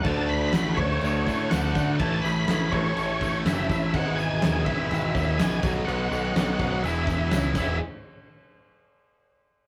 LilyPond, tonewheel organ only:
\new Staff \with { instrumentName = "Tonewheel organ" } { \time 4/4 \key e \major \tempo 4 = 124 a''8 b''4 cis''4. fis''4 | a''8 b''4 cis''4. e''4 | fis''8 gis''4 e''4. gis''8 gis''8 | fis''2 e''4. e''8 |
r1 | }